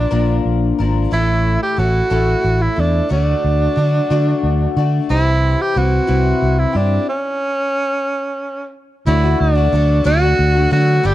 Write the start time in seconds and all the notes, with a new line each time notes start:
Already playing: F3 A#3 D4
0.11 A#1 A#2 D3 F3 A#3 D4 A#4
0.45 A#1
0.79 G#1 F3 A#3 D4 A#4
1.11 A1 A2 E3 A3 C#4 E4 A4
1.63 G4
1.76 A1 A3 C#4 E4 F#4 A4
2.10 A1 A2 E3 A3 C#4 E4 A4
2.44 A1
2.61 E4
2.76 E2 A3 D4 E4 A4
3.09 D2 D3 F#3 A3 D4 F#4
3.44 D2
3.76 D3 F#3 A3 D4 F#4
4.10 D3 F#3 A3 D4 F#4
4.43 D2
4.77 D3 A3 D4 F#4
5.09 C2 C3 E3 C4 E4 G4
5.62 G4
5.75 C2 E3 C4 E4 F#4
6.07 C2 C3 E3 C4 E4
6.42 C2
6.59 E4
6.73 G2 D4 E4 G4
6.77 C4
7.09 C#4
9.06 D2 D3 F#3 A3 D4 E4 F#4
9.23 A3 D4 F#4
9.40 D2 D4
9.55 A3 D4 F#4
9.72 D2 F#3 A3 D4 F#4
10.04 D2 D3 F#3 A3 D4 F#4
10.21 A3 D4 F#4
10.39 D2
10.54 A3 D4 F#4
10.71 D3 F#3 A3 D4 F#4
11.03 G1 G3 A3 D4 G4